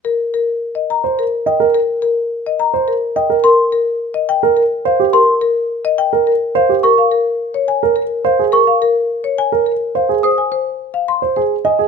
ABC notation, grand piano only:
X:1
M:3/4
L:1/16
Q:1/4=106
K:Ebmix
V:1 name="Grand piano"
z6 z c z2 e B | z6 z c z2 e B | z6 z B z2 c G | z6 z B z2 c G |
z6 z B z2 c A | z6 z B z2 c A | z6 z c A z e A |]